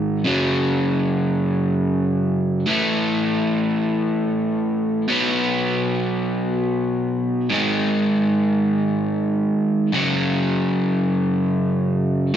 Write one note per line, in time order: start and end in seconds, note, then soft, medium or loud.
0.00 0.22 G#2 medium
0.00 0.23 D#3 medium
0.00 0.24 G#3 medium
0.24 2.65 F#2 medium
0.24 2.65 C#3 medium
0.24 2.66 F#3 medium
2.67 5.07 A2 medium
2.67 5.07 E3 medium
2.67 5.08 A3 medium
5.08 7.48 B2 medium
5.08 7.53 F#3 medium
5.08 7.50 B3 medium
7.50 9.90 G#2 medium
7.50 9.91 D#3 medium
7.50 9.92 G#3 medium
9.92 12.32 F#2 medium
9.92 12.32 C#3 medium
9.92 12.33 F#3 medium